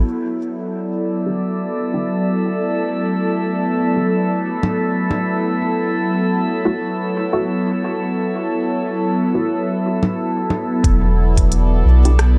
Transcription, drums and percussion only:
4.63 low conga medium
5.11 low conga medium
10.03 low conga medium
10.50 low conga medium
10.84 kick loud
10.84 closed hi-hat soft
11.37 kick loud
11.37 closed hi-hat medium
11.52 closed hi-hat soft
12.05 closed hi-hat medium
12.19 cross-stick medium
12.19 closed hi-hat soft

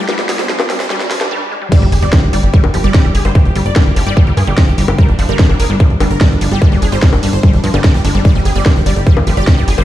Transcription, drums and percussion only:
0.09 snare loud
0.09 closed hi-hat medium
0.09 high bongo soft
0.19 snare medium
0.19 closed hi-hat soft
0.29 snare medium
0.29 open hi-hat loud
0.39 snare medium
0.39 closed hi-hat medium
0.49 snare loud
0.49 closed hi-hat medium
0.60 snare medium
0.60 closed hi-hat soft
0.60 high bongo medium
0.70 snare loud
0.70 open hi-hat loud
0.80 snare medium
0.80 closed hi-hat medium
0.90 snare loud
0.90 closed hi-hat soft
1.00 snare medium
1.00 closed hi-hat soft
1.11 snare loud
1.11 open hi-hat loud
1.21 snare loud
1.21 closed hi-hat medium
1.21 high bongo soft
1.72 kick loud
1.72 closed hi-hat medium
1.72 crash loud
1.82 closed hi-hat soft
1.92 open hi-hat loud
2.02 closed hi-hat medium
2.13 kick loud
2.13 snare loud
2.13 closed hi-hat medium
2.13 high bongo soft
2.23 closed hi-hat soft
2.33 open hi-hat loud
2.43 closed hi-hat medium
2.54 kick loud
2.54 closed hi-hat medium
2.64 closed hi-hat soft
2.64 high bongo medium
2.74 open hi-hat loud
2.84 closed hi-hat medium
2.94 kick loud
2.94 snare loud
2.94 closed hi-hat medium
3.05 closed hi-hat soft
3.15 open hi-hat loud
3.25 closed hi-hat medium
3.25 high bongo soft
3.35 kick loud
3.35 closed hi-hat medium
3.45 closed hi-hat soft
3.56 open hi-hat loud
3.66 closed hi-hat medium
3.76 kick loud
3.76 snare loud
3.76 closed hi-hat medium
3.76 high bongo medium
3.86 closed hi-hat soft
3.96 open hi-hat loud
4.07 closed hi-hat medium
4.17 kick loud
4.17 closed hi-hat medium
4.27 closed hi-hat soft
4.37 open hi-hat loud
4.37 high bongo soft
4.47 closed hi-hat medium
4.58 kick loud
4.58 snare loud
4.58 closed hi-hat medium
4.68 closed hi-hat soft
4.78 open hi-hat loud
4.88 closed hi-hat medium
4.88 high bongo medium
4.98 kick loud
4.98 closed hi-hat medium
5.09 closed hi-hat soft
5.19 open hi-hat loud
5.29 closed hi-hat medium
5.39 kick loud
5.39 snare loud
5.39 closed hi-hat medium
5.49 closed hi-hat soft
5.49 high bongo soft
5.60 open hi-hat loud
5.80 kick loud
5.80 closed hi-hat medium
5.90 closed hi-hat soft
6.00 open hi-hat loud
6.00 high bongo medium
6.11 closed hi-hat medium
6.21 kick loud
6.21 snare loud
6.21 closed hi-hat medium
6.31 closed hi-hat soft
6.41 open hi-hat loud
6.51 closed hi-hat medium
6.62 kick loud
6.62 closed hi-hat medium
6.62 high bongo soft
6.72 closed hi-hat soft
6.82 open hi-hat loud
6.92 closed hi-hat medium
7.02 kick loud
7.02 snare loud
7.02 closed hi-hat medium
7.13 closed hi-hat soft
7.13 high bongo medium
7.23 open hi-hat loud
7.33 closed hi-hat medium
7.43 kick loud
7.43 closed hi-hat medium
7.53 closed hi-hat soft
7.64 open hi-hat loud
7.74 closed hi-hat medium
7.74 high bongo soft
7.84 kick loud
7.84 snare loud
7.84 closed hi-hat soft
7.94 closed hi-hat soft
8.05 open hi-hat loud
8.15 closed hi-hat medium
8.25 kick loud
8.25 closed hi-hat medium
8.35 closed hi-hat soft
8.45 open hi-hat loud
8.56 closed hi-hat medium
8.66 kick loud
8.66 snare loud
8.66 closed hi-hat medium
8.66 high bongo soft
8.76 closed hi-hat soft
8.86 open hi-hat loud
8.96 closed hi-hat medium
9.07 kick loud
9.07 closed hi-hat medium
9.17 closed hi-hat soft
9.17 high bongo medium
9.27 open hi-hat loud
9.37 closed hi-hat medium
9.47 kick loud
9.47 snare loud
9.47 closed hi-hat medium
9.58 closed hi-hat soft
9.68 open hi-hat loud
9.78 high bongo soft

